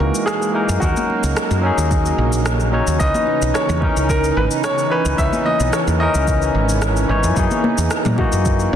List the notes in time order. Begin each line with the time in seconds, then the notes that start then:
Already playing: E3 G#3 A#3 D#4 F#4 G#4 A#4
0.00 C#2
0.15 shaker
0.26 G#4, cross-stick, shaker
0.42 shaker
0.53 E3 A#3 D#4 A#4
0.69 F#2, shaker
0.80 D#2 C#3 F#3 C#4 D#4 F#4, kick, shaker
0.84 A#4
0.96 high conga, shaker
1.10 high conga
1.24 C#2, shaker
1.37 cross-stick, shaker
1.51 F#2, high conga, shaker
1.62 F#3 C#4 D#4
1.66 G#4
1.78 D#2, shaker
1.91 kick, shaker
2.06 shaker
2.18 A#1
2.33 shaker
2.46 cross-stick, shaker
2.60 shaker
2.72 F#3 C#4 D#4 C#5
2.87 D#2, shaker
2.98 C#2 E3 B3 C#4 D#4 D#5, kick, shaker
3.03 B4
3.14 high conga, shaker
3.27 high conga
3.42 B1, shaker
3.54 C#5, cross-stick, shaker
3.69 E2, high conga, low conga, shaker
3.80 E3 C#4 D#4, kick
3.84 A#4
3.97 C#2, shaker
4.09 A#4, kick, shaker
4.24 shaker
4.37 G#1 B4
4.51 shaker
4.64 C#5, cross-stick, shaker
4.78 shaker
4.90 E3 C#4 D#4 B4 C#5
5.06 C#2, shaker
5.16 C#2 E3 C#4 D#4 E5, kick, shaker
5.21 B4
5.33 high conga, shaker
5.46 D#5, high conga
5.60 B1, shaker
5.73 C#5, cross-stick, shaker
5.87 E2, high conga, shaker
5.98 E3 C#4 D#4 D#5
6.03 A#4
6.15 C#2, shaker
6.28 kick, shaker
6.42 shaker
6.55 G#1
6.69 shaker
6.82 cross-stick, shaker
6.96 shaker
7.08 G#1 E3 C#4 D#4 C#5
7.24 F#2, shaker
7.34 F#2 E3 G#3 A#3 D#4, kick, shaker
7.39 G#4
7.51 high conga, shaker
7.64 A#3, high conga
7.78 E2, high bongo, shaker
7.91 cross-stick, shaker
8.05 A#2, high conga, low conga, shaker
8.16 E3 A#3 D#4 F#4, kick, high bongo
8.21 F#4
8.32 F#2, shaker
8.45 kick, shaker
8.59 shaker